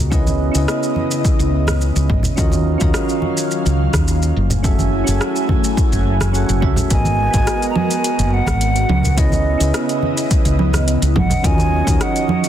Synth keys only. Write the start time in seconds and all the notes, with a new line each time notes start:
Already playing: B3 F#4 G#4 A#4 D#5
0.10 C#4 E4 G#4 B4 D#5
0.51 C#4 E4 G#4
0.56 B4 D#5
2.36 C#4 F4 F#4 A#4 D#5
2.78 C#4 F4 F#4
2.83 A#4 D#5
4.63 C#4 F#4 G#4 A4 E5
5.04 C#4 F#4 G#4
5.09 A4 E5
6.33 C#4 F#4 G#4 A4 F#5
6.61 C#4 F#4 G#4 A4 E5
6.89 B3 F#4 G#4 A#4 D#5
7.31 B3 F#4 G#4
7.35 A#4 D#5
9.16 C#4 E4 G#4 B4 D#5
9.58 C#4 E4 G#4
9.62 B4 D#5
11.43 C#4 F4 F#4 A#4 D#5
11.85 C#4 D#4 F#4
11.89 A#4 D#5